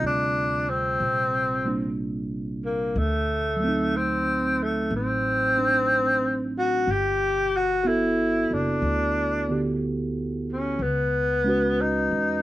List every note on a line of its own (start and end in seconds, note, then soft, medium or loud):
0.00 0.96 D2 medium
0.00 2.96 C3 soft
0.00 1.64 G3 soft
0.00 2.96 C4 soft
0.00 2.96 F4 soft
0.06 0.71 D4 medium
0.70 1.99 C4 medium
1.00 2.92 A#1 medium
1.65 2.95 G3 soft
1.65 2.96 A#3 soft
1.65 2.97 D4 soft
2.65 3.00 A#3 medium
2.96 4.87 D2 medium
2.96 3.98 A3 medium
3.56 6.85 F#3 soft
3.56 6.87 A3 soft
3.64 5.55 C4 soft
3.68 6.91 D#4 soft
3.97 4.64 C4 medium
4.63 4.93 A3 medium
4.91 6.83 A1 medium
4.96 6.53 C4 medium
5.56 6.87 C4 soft
5.56 6.88 D4 soft
6.58 6.93 F#4 medium
6.87 8.47 G1 medium
6.92 7.58 G4 medium
7.56 7.89 F#4 medium
7.84 9.47 B3 soft
7.84 10.81 E4 soft
7.84 8.55 E4 medium
7.84 10.79 F#4 soft
7.88 10.81 A4 medium
8.51 8.81 F#1 medium
8.51 9.83 D4 medium
8.82 10.75 D2 medium
9.49 10.80 D3 soft
9.49 10.80 B3 soft
9.49 10.81 G4 soft
10.52 10.84 C#4 medium
10.79 12.07 C#2 medium
10.79 11.83 B3 medium
11.44 12.42 G#3 soft
11.44 12.42 C#4 soft
11.44 12.42 F#4 soft
11.50 12.42 B4 medium
11.81 12.42 D#4 medium
12.11 12.42 E2 soft